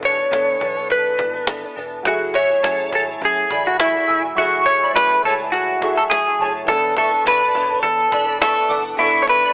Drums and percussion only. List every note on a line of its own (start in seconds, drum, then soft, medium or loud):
0.03 cajon bass medium
0.33 cajon slap loud
0.61 cajon bass medium
0.90 cajon bass medium
1.19 cajon bass loud
1.47 cajon slap loud
2.05 cajon bass loud
2.34 cajon bass loud
2.52 cajon slap soft
2.64 cajon slap medium
2.93 cajon bass medium
3.22 cajon bass medium
3.50 cajon bass medium
3.80 cajon slap loud
4.09 cajon slap soft
4.38 cajon slap soft
4.66 cajon bass medium
4.83 cajon slap soft
4.96 cajon slap loud
5.25 cajon slap soft
5.54 cajon bass medium
5.82 cajon bass medium
6.11 cajon slap loud
6.40 cajon slap soft
6.68 cajon bass loud
6.97 cajon bass loud
7.14 cajon slap soft
7.27 cajon slap loud
7.55 cajon bass medium
7.84 cajon bass medium
8.12 cajon bass loud
8.42 cajon slap loud
8.71 cajon slap soft
9.28 cajon bass medium